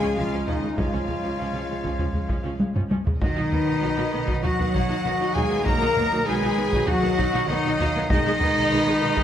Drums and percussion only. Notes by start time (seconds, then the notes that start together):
0.17 taiko low
0.48 taiko low
0.78 taiko
1.09 taiko low
1.84 taiko
1.99 taiko low
2.14 taiko low
2.29 taiko
2.60 taiko high
2.76 taiko low-mid
2.91 taiko high
3.07 taiko low
3.22 taiko
3.52 taiko low
4.28 taiko
4.45 taiko low
4.60 taiko low
4.75 taiko
5.05 taiko low
5.36 taiko low
5.66 taiko
5.97 taiko low
6.73 taiko
6.88 taiko low
7.04 taiko low
7.19 taiko
7.50 taiko low
7.80 taiko low
8.10 taiko
8.41 taiko low
9.17 taiko